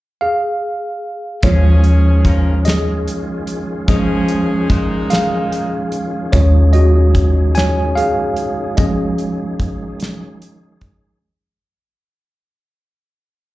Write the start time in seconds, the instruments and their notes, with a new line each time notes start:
0.21 tine electric piano G#4 F5
1.43 fingered electric bass D#2, tonewheel organ D#3 C#4 F4 G#4, horn section F3 C#4 G#4, tine electric piano F3 G#3 C#4 F4 C#5, kick, closed hi-hat
1.84 closed hi-hat
2.25 horn section F3 C#4 A#4, kick, closed hi-hat
2.65 tine electric piano G#4 D#5, snare, closed hi-hat
3.08 fingered electric bass C#2, closed hi-hat
3.47 fingered electric bass A#1, closed hi-hat
3.88 fingered electric bass D#2, horn section F3 C#4 G#4, tine electric piano F3 G#3 C#4 G#4 D#5, kick, closed hi-hat
4.28 closed hi-hat
4.69 horn section A#2 G#3 D#4, kick, closed hi-hat
5.10 tine electric piano G#4 F5, snare, closed hi-hat
5.52 closed hi-hat
5.92 closed hi-hat
6.32 fingered electric bass D#2, tine electric piano D#3 G#3 C#4 F4 C#5, tonewheel organ D#4, kick, closed hi-hat
6.73 tine electric piano F#4 D#5, closed hi-hat
7.15 kick, closed hi-hat
7.55 tine electric piano C#5 G#5, snare, closed hi-hat
7.96 fingered electric bass C#2, tine electric piano G#4 F5, closed hi-hat
8.36 fingered electric bass A#1, closed hi-hat
8.77 fingered electric bass D#2, tine electric piano F3 G#3 C#4 G#4 D#5, kick, closed hi-hat
9.18 closed hi-hat
9.60 kick, closed hi-hat
10.00 snare, closed hi-hat
10.42 closed hi-hat
10.81 kick, closed hi-hat